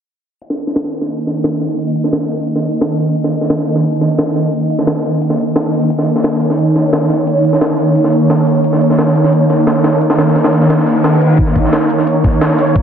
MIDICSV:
0, 0, Header, 1, 4, 480
1, 0, Start_track
1, 0, Tempo, 342857
1, 581, Time_signature, 4, 2, 24, 8
1, 17951, End_track
2, 0, Start_track
2, 0, Title_t, "Synth drone"
2, 0, Program_c, 0, 95
2, 579, Note_on_c, 0, 51, 77
2, 579, Note_on_c, 0, 58, 72
2, 579, Note_on_c, 0, 63, 76
2, 580, Note_on_c, 0, 75, 88
2, 8228, Note_off_c, 0, 75, 0
2, 8257, Note_on_c, 0, 73, 86
2, 15907, Note_off_c, 0, 73, 0
2, 15943, Note_on_c, 0, 73, 93
2, 17951, Note_off_c, 0, 51, 0
2, 17951, Note_off_c, 0, 58, 0
2, 17951, Note_off_c, 0, 63, 0
2, 17951, Note_off_c, 0, 73, 0
2, 17951, End_track
3, 0, Start_track
3, 0, Title_t, "Reverse cymbal"
3, 0, Program_c, 1, 119
3, 14980, Note_on_c, 1, 60, 56
3, 15940, Note_off_c, 1, 60, 0
3, 17951, End_track
4, 0, Start_track
4, 0, Title_t, "Drums"
4, 580, Note_on_c, 9, 42, 88
4, 701, Note_on_c, 9, 38, 49
4, 720, Note_off_c, 9, 42, 0
4, 820, Note_on_c, 9, 42, 66
4, 821, Note_off_c, 9, 42, 0
4, 821, Note_on_c, 9, 42, 64
4, 841, Note_off_c, 9, 38, 0
4, 940, Note_on_c, 9, 38, 44
4, 961, Note_off_c, 9, 42, 0
4, 1060, Note_off_c, 9, 38, 0
4, 1060, Note_on_c, 9, 38, 112
4, 1060, Note_on_c, 9, 42, 86
4, 1179, Note_off_c, 9, 38, 0
4, 1179, Note_on_c, 9, 38, 55
4, 1200, Note_off_c, 9, 42, 0
4, 1299, Note_on_c, 9, 42, 61
4, 1300, Note_off_c, 9, 42, 0
4, 1300, Note_on_c, 9, 42, 65
4, 1319, Note_off_c, 9, 38, 0
4, 1419, Note_on_c, 9, 38, 39
4, 1440, Note_off_c, 9, 42, 0
4, 1538, Note_on_c, 9, 42, 81
4, 1540, Note_off_c, 9, 42, 0
4, 1540, Note_on_c, 9, 42, 91
4, 1559, Note_off_c, 9, 38, 0
4, 1680, Note_off_c, 9, 42, 0
4, 1778, Note_on_c, 9, 38, 43
4, 1778, Note_on_c, 9, 42, 60
4, 1780, Note_off_c, 9, 42, 0
4, 1780, Note_on_c, 9, 42, 61
4, 1918, Note_off_c, 9, 38, 0
4, 1920, Note_off_c, 9, 42, 0
4, 2018, Note_on_c, 9, 38, 113
4, 2018, Note_on_c, 9, 42, 86
4, 2020, Note_off_c, 9, 42, 0
4, 2020, Note_on_c, 9, 42, 87
4, 2138, Note_off_c, 9, 38, 0
4, 2138, Note_on_c, 9, 38, 44
4, 2160, Note_off_c, 9, 42, 0
4, 2258, Note_off_c, 9, 38, 0
4, 2258, Note_on_c, 9, 38, 45
4, 2258, Note_on_c, 9, 42, 64
4, 2259, Note_off_c, 9, 42, 0
4, 2259, Note_on_c, 9, 42, 66
4, 2379, Note_off_c, 9, 42, 0
4, 2379, Note_on_c, 9, 42, 41
4, 2398, Note_off_c, 9, 38, 0
4, 2497, Note_off_c, 9, 42, 0
4, 2497, Note_on_c, 9, 42, 83
4, 2499, Note_off_c, 9, 42, 0
4, 2499, Note_on_c, 9, 42, 92
4, 2619, Note_off_c, 9, 42, 0
4, 2619, Note_on_c, 9, 42, 43
4, 2738, Note_off_c, 9, 42, 0
4, 2738, Note_on_c, 9, 42, 61
4, 2740, Note_off_c, 9, 42, 0
4, 2740, Note_on_c, 9, 42, 68
4, 2858, Note_on_c, 9, 38, 49
4, 2880, Note_off_c, 9, 42, 0
4, 2977, Note_off_c, 9, 38, 0
4, 2977, Note_on_c, 9, 38, 110
4, 2977, Note_on_c, 9, 42, 88
4, 2980, Note_off_c, 9, 42, 0
4, 2980, Note_on_c, 9, 42, 92
4, 3097, Note_off_c, 9, 38, 0
4, 3097, Note_on_c, 9, 38, 44
4, 3120, Note_off_c, 9, 42, 0
4, 3217, Note_on_c, 9, 42, 64
4, 3220, Note_off_c, 9, 42, 0
4, 3220, Note_on_c, 9, 42, 64
4, 3237, Note_off_c, 9, 38, 0
4, 3360, Note_off_c, 9, 42, 0
4, 3457, Note_on_c, 9, 42, 84
4, 3460, Note_off_c, 9, 42, 0
4, 3460, Note_on_c, 9, 42, 87
4, 3577, Note_on_c, 9, 38, 50
4, 3600, Note_off_c, 9, 42, 0
4, 3698, Note_on_c, 9, 42, 63
4, 3700, Note_off_c, 9, 42, 0
4, 3700, Note_on_c, 9, 42, 61
4, 3717, Note_off_c, 9, 38, 0
4, 3840, Note_off_c, 9, 42, 0
4, 3938, Note_on_c, 9, 38, 107
4, 3938, Note_on_c, 9, 42, 89
4, 3940, Note_off_c, 9, 42, 0
4, 3940, Note_on_c, 9, 42, 85
4, 4078, Note_off_c, 9, 38, 0
4, 4080, Note_off_c, 9, 42, 0
4, 4177, Note_on_c, 9, 42, 64
4, 4181, Note_off_c, 9, 42, 0
4, 4181, Note_on_c, 9, 42, 62
4, 4299, Note_off_c, 9, 42, 0
4, 4299, Note_on_c, 9, 42, 40
4, 4418, Note_off_c, 9, 42, 0
4, 4418, Note_on_c, 9, 42, 85
4, 4421, Note_off_c, 9, 42, 0
4, 4421, Note_on_c, 9, 42, 81
4, 4539, Note_on_c, 9, 38, 53
4, 4561, Note_off_c, 9, 42, 0
4, 4659, Note_on_c, 9, 42, 68
4, 4660, Note_off_c, 9, 42, 0
4, 4660, Note_on_c, 9, 42, 61
4, 4679, Note_off_c, 9, 38, 0
4, 4778, Note_on_c, 9, 38, 41
4, 4800, Note_off_c, 9, 42, 0
4, 4898, Note_off_c, 9, 38, 0
4, 4898, Note_on_c, 9, 38, 115
4, 4898, Note_on_c, 9, 42, 85
4, 4901, Note_off_c, 9, 42, 0
4, 4901, Note_on_c, 9, 42, 82
4, 5018, Note_off_c, 9, 38, 0
4, 5018, Note_on_c, 9, 38, 57
4, 5041, Note_off_c, 9, 42, 0
4, 5139, Note_on_c, 9, 42, 66
4, 5141, Note_off_c, 9, 42, 0
4, 5141, Note_on_c, 9, 42, 63
4, 5158, Note_off_c, 9, 38, 0
4, 5258, Note_on_c, 9, 38, 42
4, 5281, Note_off_c, 9, 42, 0
4, 5377, Note_on_c, 9, 42, 81
4, 5381, Note_off_c, 9, 42, 0
4, 5381, Note_on_c, 9, 42, 89
4, 5398, Note_off_c, 9, 38, 0
4, 5521, Note_off_c, 9, 42, 0
4, 5618, Note_on_c, 9, 38, 45
4, 5618, Note_on_c, 9, 42, 64
4, 5620, Note_off_c, 9, 42, 0
4, 5620, Note_on_c, 9, 42, 59
4, 5758, Note_off_c, 9, 38, 0
4, 5760, Note_off_c, 9, 42, 0
4, 5859, Note_on_c, 9, 38, 114
4, 5859, Note_on_c, 9, 42, 82
4, 5862, Note_off_c, 9, 42, 0
4, 5862, Note_on_c, 9, 42, 90
4, 5979, Note_off_c, 9, 38, 0
4, 5979, Note_on_c, 9, 38, 44
4, 6002, Note_off_c, 9, 42, 0
4, 6099, Note_off_c, 9, 38, 0
4, 6099, Note_on_c, 9, 38, 44
4, 6099, Note_on_c, 9, 42, 64
4, 6102, Note_off_c, 9, 42, 0
4, 6102, Note_on_c, 9, 42, 58
4, 6220, Note_off_c, 9, 42, 0
4, 6220, Note_on_c, 9, 42, 42
4, 6239, Note_off_c, 9, 38, 0
4, 6340, Note_off_c, 9, 42, 0
4, 6340, Note_on_c, 9, 42, 86
4, 6342, Note_off_c, 9, 42, 0
4, 6342, Note_on_c, 9, 42, 85
4, 6460, Note_off_c, 9, 42, 0
4, 6460, Note_on_c, 9, 42, 44
4, 6580, Note_off_c, 9, 42, 0
4, 6580, Note_on_c, 9, 42, 65
4, 6582, Note_off_c, 9, 42, 0
4, 6582, Note_on_c, 9, 42, 61
4, 6702, Note_on_c, 9, 38, 50
4, 6722, Note_off_c, 9, 42, 0
4, 6821, Note_off_c, 9, 38, 0
4, 6821, Note_on_c, 9, 38, 117
4, 6821, Note_on_c, 9, 42, 89
4, 6940, Note_off_c, 9, 38, 0
4, 6940, Note_on_c, 9, 38, 43
4, 6961, Note_off_c, 9, 42, 0
4, 7060, Note_on_c, 9, 42, 64
4, 7061, Note_off_c, 9, 42, 0
4, 7061, Note_on_c, 9, 42, 61
4, 7080, Note_off_c, 9, 38, 0
4, 7201, Note_off_c, 9, 42, 0
4, 7300, Note_on_c, 9, 42, 81
4, 7420, Note_on_c, 9, 38, 51
4, 7440, Note_off_c, 9, 42, 0
4, 7539, Note_on_c, 9, 42, 59
4, 7540, Note_off_c, 9, 42, 0
4, 7540, Note_on_c, 9, 42, 67
4, 7560, Note_off_c, 9, 38, 0
4, 7680, Note_off_c, 9, 42, 0
4, 7780, Note_on_c, 9, 38, 108
4, 7780, Note_on_c, 9, 42, 87
4, 7781, Note_off_c, 9, 42, 0
4, 7781, Note_on_c, 9, 42, 80
4, 7920, Note_off_c, 9, 38, 0
4, 7921, Note_off_c, 9, 42, 0
4, 8020, Note_on_c, 9, 42, 57
4, 8021, Note_off_c, 9, 42, 0
4, 8021, Note_on_c, 9, 42, 65
4, 8140, Note_off_c, 9, 42, 0
4, 8140, Note_on_c, 9, 42, 42
4, 8259, Note_off_c, 9, 42, 0
4, 8259, Note_on_c, 9, 42, 84
4, 8261, Note_off_c, 9, 42, 0
4, 8261, Note_on_c, 9, 42, 85
4, 8380, Note_on_c, 9, 38, 48
4, 8401, Note_off_c, 9, 42, 0
4, 8499, Note_on_c, 9, 42, 66
4, 8500, Note_off_c, 9, 42, 0
4, 8500, Note_on_c, 9, 42, 64
4, 8520, Note_off_c, 9, 38, 0
4, 8619, Note_on_c, 9, 38, 41
4, 8640, Note_off_c, 9, 42, 0
4, 8738, Note_off_c, 9, 38, 0
4, 8738, Note_on_c, 9, 38, 114
4, 8738, Note_on_c, 9, 42, 88
4, 8741, Note_off_c, 9, 42, 0
4, 8741, Note_on_c, 9, 42, 84
4, 8859, Note_off_c, 9, 38, 0
4, 8859, Note_on_c, 9, 38, 53
4, 8881, Note_off_c, 9, 42, 0
4, 8980, Note_on_c, 9, 42, 61
4, 8999, Note_off_c, 9, 38, 0
4, 9100, Note_on_c, 9, 38, 41
4, 9120, Note_off_c, 9, 42, 0
4, 9220, Note_on_c, 9, 42, 85
4, 9221, Note_off_c, 9, 42, 0
4, 9221, Note_on_c, 9, 42, 84
4, 9240, Note_off_c, 9, 38, 0
4, 9361, Note_off_c, 9, 42, 0
4, 9460, Note_on_c, 9, 38, 45
4, 9460, Note_on_c, 9, 42, 66
4, 9461, Note_off_c, 9, 42, 0
4, 9461, Note_on_c, 9, 42, 56
4, 9600, Note_off_c, 9, 38, 0
4, 9601, Note_off_c, 9, 42, 0
4, 9700, Note_on_c, 9, 38, 113
4, 9700, Note_on_c, 9, 42, 85
4, 9820, Note_off_c, 9, 38, 0
4, 9820, Note_on_c, 9, 38, 45
4, 9840, Note_off_c, 9, 42, 0
4, 9940, Note_off_c, 9, 38, 0
4, 9940, Note_on_c, 9, 38, 45
4, 9940, Note_on_c, 9, 42, 64
4, 9941, Note_off_c, 9, 42, 0
4, 9941, Note_on_c, 9, 42, 59
4, 10060, Note_off_c, 9, 42, 0
4, 10060, Note_on_c, 9, 42, 42
4, 10080, Note_off_c, 9, 38, 0
4, 10180, Note_off_c, 9, 42, 0
4, 10180, Note_on_c, 9, 42, 87
4, 10181, Note_off_c, 9, 42, 0
4, 10181, Note_on_c, 9, 42, 85
4, 10301, Note_off_c, 9, 42, 0
4, 10301, Note_on_c, 9, 42, 43
4, 10419, Note_off_c, 9, 42, 0
4, 10419, Note_on_c, 9, 42, 65
4, 10420, Note_off_c, 9, 42, 0
4, 10420, Note_on_c, 9, 42, 68
4, 10540, Note_on_c, 9, 38, 49
4, 10560, Note_off_c, 9, 42, 0
4, 10659, Note_off_c, 9, 38, 0
4, 10659, Note_on_c, 9, 38, 117
4, 10659, Note_on_c, 9, 42, 88
4, 10779, Note_off_c, 9, 38, 0
4, 10779, Note_on_c, 9, 38, 44
4, 10799, Note_off_c, 9, 42, 0
4, 10899, Note_on_c, 9, 42, 64
4, 10919, Note_off_c, 9, 38, 0
4, 11039, Note_off_c, 9, 42, 0
4, 11138, Note_on_c, 9, 42, 88
4, 11139, Note_off_c, 9, 42, 0
4, 11139, Note_on_c, 9, 42, 81
4, 11260, Note_on_c, 9, 38, 52
4, 11279, Note_off_c, 9, 42, 0
4, 11379, Note_on_c, 9, 42, 66
4, 11380, Note_off_c, 9, 42, 0
4, 11380, Note_on_c, 9, 42, 61
4, 11400, Note_off_c, 9, 38, 0
4, 11520, Note_off_c, 9, 42, 0
4, 11619, Note_on_c, 9, 38, 113
4, 11619, Note_on_c, 9, 42, 86
4, 11759, Note_off_c, 9, 38, 0
4, 11759, Note_off_c, 9, 42, 0
4, 11860, Note_on_c, 9, 42, 67
4, 11980, Note_off_c, 9, 42, 0
4, 11980, Note_on_c, 9, 42, 42
4, 12099, Note_off_c, 9, 42, 0
4, 12099, Note_on_c, 9, 42, 80
4, 12100, Note_off_c, 9, 42, 0
4, 12100, Note_on_c, 9, 42, 94
4, 12220, Note_on_c, 9, 38, 52
4, 12240, Note_off_c, 9, 42, 0
4, 12340, Note_on_c, 9, 42, 67
4, 12360, Note_off_c, 9, 38, 0
4, 12460, Note_on_c, 9, 38, 41
4, 12480, Note_off_c, 9, 42, 0
4, 12580, Note_off_c, 9, 38, 0
4, 12580, Note_on_c, 9, 38, 121
4, 12580, Note_on_c, 9, 42, 87
4, 12700, Note_off_c, 9, 38, 0
4, 12700, Note_on_c, 9, 38, 54
4, 12720, Note_off_c, 9, 42, 0
4, 12819, Note_on_c, 9, 42, 65
4, 12820, Note_off_c, 9, 42, 0
4, 12820, Note_on_c, 9, 42, 62
4, 12840, Note_off_c, 9, 38, 0
4, 12940, Note_on_c, 9, 38, 41
4, 12960, Note_off_c, 9, 42, 0
4, 13059, Note_on_c, 9, 42, 92
4, 13060, Note_off_c, 9, 42, 0
4, 13060, Note_on_c, 9, 42, 85
4, 13080, Note_off_c, 9, 38, 0
4, 13200, Note_off_c, 9, 42, 0
4, 13300, Note_on_c, 9, 38, 45
4, 13300, Note_on_c, 9, 42, 66
4, 13440, Note_off_c, 9, 38, 0
4, 13440, Note_off_c, 9, 42, 0
4, 13539, Note_on_c, 9, 38, 117
4, 13539, Note_on_c, 9, 42, 84
4, 13540, Note_off_c, 9, 42, 0
4, 13540, Note_on_c, 9, 42, 89
4, 13659, Note_off_c, 9, 38, 0
4, 13659, Note_on_c, 9, 38, 43
4, 13680, Note_off_c, 9, 42, 0
4, 13779, Note_off_c, 9, 38, 0
4, 13779, Note_on_c, 9, 38, 104
4, 13779, Note_on_c, 9, 42, 76
4, 13780, Note_off_c, 9, 42, 0
4, 13780, Note_on_c, 9, 42, 64
4, 13919, Note_off_c, 9, 38, 0
4, 13920, Note_off_c, 9, 42, 0
4, 14019, Note_on_c, 9, 42, 56
4, 14020, Note_off_c, 9, 42, 0
4, 14020, Note_on_c, 9, 42, 94
4, 14139, Note_off_c, 9, 42, 0
4, 14139, Note_on_c, 9, 38, 99
4, 14139, Note_on_c, 9, 42, 76
4, 14259, Note_off_c, 9, 38, 0
4, 14259, Note_off_c, 9, 42, 0
4, 14259, Note_on_c, 9, 38, 103
4, 14259, Note_on_c, 9, 42, 79
4, 14261, Note_off_c, 9, 42, 0
4, 14261, Note_on_c, 9, 42, 69
4, 14381, Note_off_c, 9, 38, 0
4, 14381, Note_on_c, 9, 38, 41
4, 14401, Note_off_c, 9, 42, 0
4, 14500, Note_off_c, 9, 38, 0
4, 14500, Note_on_c, 9, 38, 42
4, 14500, Note_on_c, 9, 42, 62
4, 14501, Note_off_c, 9, 42, 0
4, 14501, Note_on_c, 9, 42, 95
4, 14620, Note_off_c, 9, 38, 0
4, 14620, Note_off_c, 9, 42, 0
4, 14620, Note_on_c, 9, 38, 103
4, 14620, Note_on_c, 9, 42, 75
4, 14740, Note_off_c, 9, 38, 0
4, 14740, Note_off_c, 9, 42, 0
4, 14740, Note_on_c, 9, 38, 39
4, 14740, Note_on_c, 9, 42, 67
4, 14860, Note_off_c, 9, 38, 0
4, 14860, Note_off_c, 9, 42, 0
4, 14860, Note_on_c, 9, 38, 41
4, 14860, Note_on_c, 9, 42, 60
4, 14980, Note_off_c, 9, 38, 0
4, 14980, Note_off_c, 9, 42, 0
4, 14980, Note_on_c, 9, 38, 92
4, 14980, Note_on_c, 9, 42, 71
4, 15100, Note_off_c, 9, 38, 0
4, 15100, Note_on_c, 9, 38, 41
4, 15120, Note_off_c, 9, 42, 0
4, 15220, Note_off_c, 9, 38, 0
4, 15220, Note_on_c, 9, 38, 41
4, 15220, Note_on_c, 9, 42, 68
4, 15360, Note_off_c, 9, 38, 0
4, 15360, Note_off_c, 9, 42, 0
4, 15460, Note_on_c, 9, 38, 109
4, 15460, Note_on_c, 9, 42, 92
4, 15600, Note_off_c, 9, 38, 0
4, 15600, Note_off_c, 9, 42, 0
4, 15700, Note_on_c, 9, 42, 69
4, 15821, Note_off_c, 9, 42, 0
4, 15821, Note_on_c, 9, 42, 44
4, 15940, Note_on_c, 9, 36, 107
4, 15941, Note_off_c, 9, 42, 0
4, 15941, Note_on_c, 9, 42, 93
4, 16061, Note_on_c, 9, 38, 52
4, 16080, Note_off_c, 9, 36, 0
4, 16081, Note_off_c, 9, 42, 0
4, 16179, Note_on_c, 9, 42, 66
4, 16180, Note_off_c, 9, 42, 0
4, 16180, Note_on_c, 9, 36, 60
4, 16180, Note_on_c, 9, 42, 70
4, 16201, Note_off_c, 9, 38, 0
4, 16300, Note_on_c, 9, 38, 42
4, 16320, Note_off_c, 9, 36, 0
4, 16320, Note_off_c, 9, 42, 0
4, 16419, Note_off_c, 9, 38, 0
4, 16419, Note_on_c, 9, 38, 115
4, 16419, Note_on_c, 9, 42, 87
4, 16420, Note_off_c, 9, 42, 0
4, 16420, Note_on_c, 9, 42, 91
4, 16539, Note_off_c, 9, 38, 0
4, 16539, Note_on_c, 9, 38, 53
4, 16560, Note_off_c, 9, 42, 0
4, 16659, Note_on_c, 9, 42, 62
4, 16661, Note_off_c, 9, 42, 0
4, 16661, Note_on_c, 9, 42, 65
4, 16679, Note_off_c, 9, 38, 0
4, 16779, Note_on_c, 9, 38, 43
4, 16801, Note_off_c, 9, 42, 0
4, 16899, Note_on_c, 9, 42, 79
4, 16901, Note_off_c, 9, 42, 0
4, 16901, Note_on_c, 9, 42, 92
4, 16919, Note_off_c, 9, 38, 0
4, 17041, Note_off_c, 9, 42, 0
4, 17140, Note_on_c, 9, 36, 93
4, 17140, Note_on_c, 9, 38, 43
4, 17140, Note_on_c, 9, 42, 67
4, 17280, Note_off_c, 9, 36, 0
4, 17280, Note_off_c, 9, 38, 0
4, 17280, Note_off_c, 9, 42, 0
4, 17380, Note_on_c, 9, 38, 111
4, 17380, Note_on_c, 9, 42, 87
4, 17381, Note_off_c, 9, 42, 0
4, 17381, Note_on_c, 9, 42, 93
4, 17500, Note_off_c, 9, 38, 0
4, 17500, Note_on_c, 9, 38, 48
4, 17521, Note_off_c, 9, 42, 0
4, 17620, Note_off_c, 9, 38, 0
4, 17620, Note_on_c, 9, 38, 47
4, 17620, Note_on_c, 9, 42, 68
4, 17621, Note_off_c, 9, 42, 0
4, 17621, Note_on_c, 9, 42, 61
4, 17740, Note_off_c, 9, 42, 0
4, 17740, Note_on_c, 9, 42, 43
4, 17760, Note_off_c, 9, 38, 0
4, 17860, Note_off_c, 9, 42, 0
4, 17860, Note_on_c, 9, 36, 121
4, 17860, Note_on_c, 9, 42, 84
4, 17861, Note_off_c, 9, 42, 0
4, 17861, Note_on_c, 9, 42, 94
4, 17951, Note_off_c, 9, 36, 0
4, 17951, Note_off_c, 9, 42, 0
4, 17951, End_track
0, 0, End_of_file